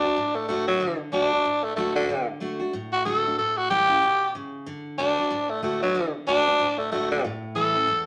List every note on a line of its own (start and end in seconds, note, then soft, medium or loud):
0.00 0.37 D4 loud
0.00 0.16 F#4 medium
0.05 0.17 D4 medium
0.17 0.78 A2 medium
0.35 0.47 A3 medium
0.48 0.67 D3 medium
0.48 0.67 A3 medium
0.48 0.67 A3 loud
0.48 0.68 D4 loud
0.48 0.67 F#4 medium
0.68 0.99 F#3 medium
0.68 0.81 D4 soft
0.68 0.80 F#4 medium
0.80 1.11 D3 loud
1.12 1.31 D3 medium
1.12 1.32 A3 medium
1.12 1.65 D4 loud
1.12 1.32 D4 medium
1.12 1.30 F#4 loud
1.32 1.45 D4 soft
1.32 1.44 F#4 medium
1.45 2.07 A2 medium
1.64 1.75 A3 medium
1.76 1.96 D3 medium
1.76 1.95 A3 medium
1.76 1.96 A3 medium
1.76 1.96 D4 medium
1.76 1.95 F#4 loud
1.96 2.27 D3 medium
1.96 2.09 D4 soft
1.96 2.09 F#4 medium
2.09 2.39 D3 medium
2.40 2.60 D3 medium
2.40 2.60 A3 medium
2.40 2.60 D4 medium
2.40 2.58 F#4 medium
2.60 2.73 D4 medium
2.60 2.73 F#4 medium
2.73 3.35 A2 medium
2.93 3.05 F#4 medium
3.05 3.24 D3 medium
3.05 3.25 A3 medium
3.05 3.25 D4 loud
3.05 3.24 F#4 loud
3.05 3.37 A4 medium
3.25 3.38 D4 medium
3.25 3.38 F#4 medium
3.38 4.00 A2 medium
3.38 3.59 A4 medium
3.57 3.69 F#4 medium
3.69 3.89 E3 medium
3.69 3.89 G3 medium
3.69 3.89 C#4 loud
3.69 3.88 E4 loud
3.69 4.32 G4 loud
3.89 4.02 C#4 medium
3.89 4.02 E4 medium
4.02 4.33 B2 medium
4.35 4.66 C#3 medium
4.66 4.97 D3 medium
4.98 5.17 D3 medium
4.98 5.17 A3 medium
4.98 5.52 D4 loud
4.98 5.18 D4 medium
4.98 5.17 F#4 medium
5.18 5.31 D4 medium
5.18 5.30 F#4 medium
5.30 5.92 A2 loud
5.50 5.63 A3 medium
5.62 5.81 D3 medium
5.62 5.81 A3 medium
5.62 5.82 A3 medium
5.62 5.82 D4 medium
5.62 5.81 F#4 medium
5.82 6.14 F#3 medium
5.82 5.95 D4 medium
5.82 5.94 F#4 medium
5.95 6.25 D3 medium
6.27 6.46 D3 medium
6.27 6.46 A3 medium
6.27 6.46 D4 medium
6.27 6.80 D4 loud
6.27 6.45 F#4 loud
6.47 6.59 D4 medium
6.47 6.59 F#4 medium
6.59 7.21 A2 loud
6.79 6.91 A3 loud
6.91 7.10 D3 medium
6.91 7.11 A3 medium
6.91 7.10 A3 medium
6.91 7.11 D4 medium
6.91 7.10 F#4 loud
7.11 7.23 D3 medium
7.11 7.24 D4 medium
7.11 7.23 F#4 medium
7.24 7.86 A2 loud
7.55 7.74 E3 medium
7.55 7.74 G3 medium
7.55 7.75 C#4 loud
7.55 7.73 E4 medium
7.55 8.06 A4 loud
7.74 7.88 C#4 medium
7.74 7.87 E4 medium
7.88 8.06 E2 loud